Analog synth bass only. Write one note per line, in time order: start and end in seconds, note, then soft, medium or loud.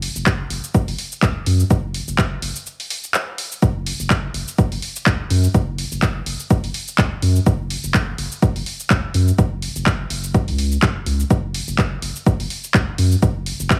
0.16 0.45 F#1 medium
0.50 0.59 F#1 loud
0.88 0.95 F#1 loud
1.23 1.31 C#2 medium
1.47 1.63 F#2 medium
1.70 2.01 F#1 loud
2.08 2.37 F#1 medium
2.42 2.51 F#1 loud
3.62 3.93 F#1 loud
4.00 4.29 F#1 loud
4.34 4.43 F#1 loud
4.72 4.79 F#1 loud
5.06 5.15 C#2 medium
5.30 5.47 F#2 medium
5.55 5.85 F#1 loud
5.92 6.21 F#1 loud
6.26 6.35 F#1 medium
6.64 6.71 F#1 loud
6.98 7.07 C#2 medium
7.22 7.39 F#2 medium
7.46 7.77 F#1 loud
7.84 8.13 F#1 medium
8.18 8.27 F#1 loud
8.56 8.63 F#1 loud
8.90 8.99 C#2 medium
9.14 9.31 F#2 medium
9.38 9.69 F#1 loud
9.76 10.05 F#1 loud
10.10 10.49 F#1 medium
10.48 10.77 C#2 loud
10.82 10.91 F#1 loud
11.06 11.23 C#2 medium
11.30 11.61 F#1 loud
11.68 11.97 F#1 loud
12.02 12.11 F#1 loud
12.40 12.47 F#1 loud
12.74 12.83 C#2 medium
12.98 13.15 F#2 loud
13.22 13.53 F#1 loud
13.60 13.80 F#1 loud